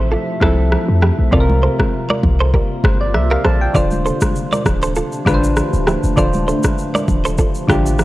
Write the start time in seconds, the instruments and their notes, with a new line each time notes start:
Already playing: 808-style bass A1, ambient pad C3 F3 A3 E5, synth keys F3 C4 E4 A4
0.12 clean electric guitar F4 A4
0.40 808-style bass C2, synth keys F3 C4 E4 A4, kick, cross-stick, high conga
0.72 cross-stick, low conga
0.88 808-style bass F2
1.02 clean electric guitar E4 G4, cross-stick, low conga
1.19 808-style bass A#1
1.31 808-style bass C2, synth keys C3 C4 F4 A4, ambient pad G3 A#3 F4, clean electric guitar A#4 D5, kick, low conga
1.40 synth keys A#4
1.50 high conga
1.63 clean electric guitar A4 C5
1.79 kick, cross-stick, high conga
2.10 clean electric guitar A#4 D5, high conga
2.23 808-style bass C2, kick, low conga
2.40 clean electric guitar A4 C5
2.54 clean electric guitar G4 A#4, kick
2.84 808-style bass G1, synth keys C5, kick, cross-stick, high conga
3.01 synth keys D5
3.14 808-style bass C2, synth keys E5, cross-stick, low conga
3.31 clean electric guitar G4 A#4, synth keys F5
3.45 808-style bass A#1, clean electric guitar A4 C5, synth keys A5, cross-stick, low conga
3.61 synth keys G5
3.74 808-style bass D1, synth keys D3 D4 F4 C5, ambient pad F3 A3 D4, clean electric guitar A4 D5, kick, low conga, shaker
3.91 high conga, shaker
4.06 clean electric guitar A4 C5, shaker
4.21 kick, cross-stick, high conga, shaker
4.36 shaker
4.52 clean electric guitar A#4 D5, high conga, shaker
4.66 808-style bass D1, kick, cross-stick, low conga, shaker
4.82 clean electric guitar A4 C5, shaker
4.95 clean electric guitar F4 A4, shaker
5.12 shaker
5.25 808-style bass A1, synth keys D3 D4 F4 B4, kick, cross-stick, high conga, shaker
5.34 synth keys C5
5.44 shaker
5.56 cross-stick, low conga, shaker
5.73 808-style bass D1, shaker
5.87 clean electric guitar E4 G4, cross-stick, low conga, shaker
6.03 808-style bass E1, shaker
6.16 808-style bass D1, synth keys D3 D4 F4 C5, clean electric guitar A4 D5, kick, low conga, shaker
6.33 high conga, shaker
6.48 clean electric guitar A4 C5, shaker
6.63 kick, cross-stick, high conga, shaker
6.78 shaker
6.95 clean electric guitar A#4 D5, high conga, shaker
7.08 808-style bass D1, kick, low conga, shaker
7.25 clean electric guitar A4 C5, shaker
7.38 clean electric guitar F4 A4, kick, shaker
7.55 shaker
7.68 808-style bass A1, synth keys D3 D4 F4 G4, kick, cross-stick, high conga, shaker
7.86 shaker
7.99 808-style bass G1, cross-stick, low conga, shaker